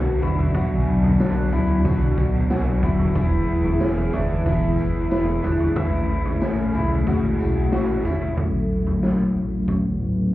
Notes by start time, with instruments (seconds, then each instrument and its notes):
Already playing: sub bass B1, overdriven electric guitar B2 F#3 B3 D4 F#4, string machine F#3 B3 D4
0.21 sub bass A1, overdriven electric guitar D4 F#4, twelve-string acoustic guitar E4, floor tom, tambourine
0.27 overdriven electric guitar B3
0.38 floor tom
0.54 sub bass B1, overdriven electric guitar B2 F#3 B3 D4, celesta E5, kick, floor tom, tambourine
0.58 overdriven electric guitar F#4
0.77 celesta G#5
0.85 sub bass B1, overdriven electric guitar D4 F#4
0.91 overdriven electric guitar B3
1.04 floor tom
1.19 sub bass B1, overdriven electric guitar B2 F#3 B3 D4, snare, tambourine
1.23 overdriven electric guitar F#4
1.50 sub bass C#2, overdriven electric guitar D4 F#4, twelve-string acoustic guitar E4, floor tom, tambourine
1.56 overdriven electric guitar B3
1.84 sub bass B1, overdriven electric guitar F#3 B3, kick, floor tom, tambourine
1.88 overdriven electric guitar D4 F#4
2.16 sub bass C#2, overdriven electric guitar D4 F#4, kick, tambourine
2.22 overdriven electric guitar B3
2.49 sub bass B1, overdriven electric guitar B2 F#3 B3 D4 F#4, celesta G#5, snare, tambourine
2.81 sub bass D1, overdriven electric guitar D4 F#4, twelve-string acoustic guitar E4, kick, floor tom, tambourine
2.87 overdriven electric guitar B3
2.99 floor tom
3.14 sub bass E1, overdriven electric guitar E3 B3 E4, string machine E3 E4 G#4 B4, kick, floor tom, tambourine
3.18 overdriven electric guitar G#4
3.46 sub bass E1, overdriven electric guitar E4 G#4
3.52 overdriven electric guitar B3
3.64 floor tom
3.79 sub bass E1, overdriven electric guitar E3 B3 E4, twelve-string acoustic guitar C#4, snare, tambourine
3.83 overdriven electric guitar G#4
4.11 sub bass F#1, twelve-string acoustic guitar D4, overdriven electric guitar E4 G#4, celesta E5, floor tom, tambourine
4.17 overdriven electric guitar B3
4.44 sub bass E1, overdriven electric guitar E3 B3, kick, floor tom, tambourine
4.48 overdriven electric guitar E4 G#4
4.76 sub bass F#1, overdriven electric guitar E4 G#4, tambourine
4.82 overdriven electric guitar B3
5.10 sub bass E1, overdriven electric guitar E3 B3 E4, snare, tambourine
5.14 overdriven electric guitar G#4
5.42 sub bass G#1, twelve-string acoustic guitar D4, overdriven electric guitar E4 G#4, floor tom, tambourine
5.47 overdriven electric guitar B3
5.60 floor tom
5.75 sub bass A1, overdriven electric guitar A3 C#4 E4, string machine A3 C#4 G#4, celesta B4, kick, floor tom, tambourine
5.79 overdriven electric guitar G#4
6.07 sub bass A1, overdriven electric guitar E4 G#4
6.13 overdriven electric guitar C#4
6.25 floor tom
6.40 sub bass A1, overdriven electric guitar A3 C#4 E4, snare, tambourine
6.44 overdriven electric guitar G#4
6.73 sub bass B1, overdriven electric guitar E4 G#4, floor tom, tambourine
6.79 overdriven electric guitar C#4
7.05 sub bass A1, overdriven electric guitar A3 C#4 E4, twelve-string acoustic guitar F#4, kick, floor tom, tambourine
7.11 overdriven electric guitar G#4
7.38 sub bass B1, overdriven electric guitar E4 G#4, tambourine
7.44 overdriven electric guitar C#4
7.71 sub bass A1, overdriven electric guitar A3 C#4 E4 G#4, twelve-string acoustic guitar F#4, snare, tambourine
8.03 sub bass G#1, overdriven electric guitar E4 G#4, floor tom, tambourine
8.09 overdriven electric guitar C#4
8.21 floor tom
8.37 sub bass A1, string machine F#3 A3 C#4, twelve-string acoustic guitar A3, kick, floor tom
8.70 twelve-string acoustic guitar B3
8.87 floor tom
9.03 twelve-string acoustic guitar E4, snare
9.35 sub bass A1
9.68 sub bass A1, twelve-string acoustic guitar B3, kick, floor tom
10.00 sub bass A2